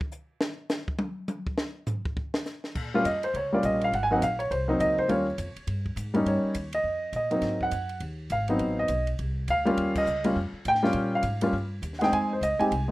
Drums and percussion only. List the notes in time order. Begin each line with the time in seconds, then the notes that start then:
0.01 kick
0.12 hi-hat pedal
0.41 snare
0.69 snare, hi-hat pedal
0.88 kick
0.99 high tom
1.28 hi-hat pedal, high tom
1.47 kick
1.58 snare
1.87 floor tom, hi-hat pedal
2.05 kick
2.17 kick
2.34 snare
2.46 snare, hi-hat pedal
2.64 snare
2.75 kick, crash
3.05 kick, hi-hat pedal, ride
3.23 ride
3.34 kick, ride
3.63 kick, hi-hat pedal, ride
3.81 ride
3.93 kick, ride
4.22 kick, hi-hat pedal, ride
4.40 ride
4.51 kick, ride
4.80 kick, hi-hat pedal, ride
4.98 kick
5.09 kick, ride
5.38 kick, hi-hat pedal, ride
5.56 ride
5.67 kick, ride
5.86 kick
5.97 kick, hi-hat pedal, ride
6.14 ride
6.26 kick, ride
6.55 kick, hi-hat pedal, ride
6.73 ride
6.84 kick
7.13 kick, hi-hat pedal, ride
7.31 ride
7.42 kick, snare, ride
7.61 kick
7.71 kick, hi-hat pedal, ride
7.89 ride
8.00 kick, ride
8.30 kick, hi-hat pedal, ride
8.48 ride
8.59 kick, ride
8.88 kick, hi-hat pedal, ride
9.07 ride
9.19 kick, ride
9.48 kick, hi-hat pedal, ride
9.66 ride
9.77 kick, ride
9.95 kick, crash
10.06 hi-hat pedal
10.24 ride
10.36 kick
10.65 kick, hi-hat pedal, ride
10.75 snare
10.84 snare
10.93 kick, ride
11.23 kick, hi-hat pedal, ride
11.41 ride
11.53 kick
11.83 kick, hi-hat pedal, ride
11.93 snare
12.01 snare, ride
12.12 kick, ride
12.42 kick, hi-hat pedal, ride
12.60 ride
12.71 kick, ride